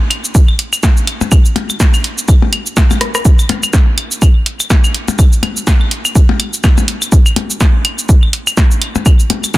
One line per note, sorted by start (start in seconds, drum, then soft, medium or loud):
0.10 closed hi-hat medium
0.10 claves medium
0.25 shaker soft
0.35 kick loud
0.35 shaker medium
0.48 claves medium
0.59 closed hi-hat medium
0.73 claves medium
0.73 shaker soft
0.83 kick loud
0.83 snare medium
0.83 shaker medium
0.97 shaker soft
1.07 closed hi-hat medium
1.07 claves medium
1.21 percussion blips medium
1.21 shaker soft
1.32 kick loud
1.32 claves medium
1.32 shaker medium
1.45 shaker soft
1.56 closed hi-hat medium
1.56 percussion blips medium
1.70 claves medium
1.70 shaker soft
1.80 kick loud
1.80 snare medium
1.80 closed hi-hat soft
1.80 shaker medium
1.94 claves medium
1.94 shaker soft
2.04 closed hi-hat medium
2.18 shaker soft
2.28 kick loud
2.28 claves medium
2.28 shaker medium
2.42 percussion blips medium
2.53 closed hi-hat medium
2.53 claves medium
2.66 shaker soft
2.77 kick loud
2.77 snare medium
2.77 shaker medium
2.91 percussion blips medium
2.91 claves medium
2.91 shaker soft
3.01 cross-stick medium
3.01 closed hi-hat medium
3.15 cross-stick medium
3.15 claves medium
3.15 shaker soft
3.25 kick loud
3.25 shaker medium
3.39 claves medium
3.39 shaker soft
3.49 closed hi-hat medium
3.49 percussion blips medium
3.63 claves medium
3.63 shaker soft
3.73 kick loud
3.73 snare loud
3.73 shaker medium
3.98 closed hi-hat medium
3.98 claves medium
4.11 shaker soft
4.22 kick loud
4.22 claves medium
4.22 shaker medium
4.46 closed hi-hat medium
4.60 claves medium
4.60 shaker soft
4.70 kick loud
4.70 snare loud
4.70 shaker medium
4.84 claves medium
4.84 shaker soft
4.95 closed hi-hat medium
5.08 percussion blips medium
5.08 shaker soft
5.19 kick loud
5.19 claves medium
5.19 shaker medium
5.33 shaker soft
5.43 closed hi-hat loud
5.43 percussion blips medium
5.43 claves medium
5.57 shaker soft
5.67 kick loud
5.67 snare loud
5.67 shaker medium
5.81 claves medium
5.91 closed hi-hat loud
6.05 claves medium
6.05 shaker soft
6.15 kick loud
6.15 shaker medium
6.29 percussion blips medium
6.40 closed hi-hat medium
6.40 claves medium
6.54 shaker soft
6.64 kick loud
6.64 snare medium
6.64 claves medium
6.64 shaker medium
6.78 percussion blips medium
6.78 shaker soft
6.88 closed hi-hat medium
7.02 claves medium
7.02 shaker soft
7.12 kick loud
7.12 shaker soft
7.26 claves medium
7.26 shaker soft
7.36 closed hi-hat loud
7.36 percussion blips medium
7.50 shaker soft
7.61 kick loud
7.61 snare medium
7.61 claves medium
7.61 shaker soft
7.85 closed hi-hat loud
7.85 claves medium
7.99 shaker soft
8.09 kick loud
8.09 shaker medium
8.23 claves medium
8.33 closed hi-hat medium
8.47 claves medium
8.47 shaker soft
8.57 kick loud
8.57 snare medium
8.57 shaker medium
8.71 shaker soft
8.82 closed hi-hat loud
8.82 claves medium
8.96 percussion blips medium
8.96 shaker soft
9.06 kick loud
9.06 claves medium
9.06 shaker soft
9.20 shaker soft
9.30 closed hi-hat loud
9.30 percussion blips medium
9.44 claves medium
9.44 shaker soft
9.54 kick loud
9.54 snare medium
9.54 shaker soft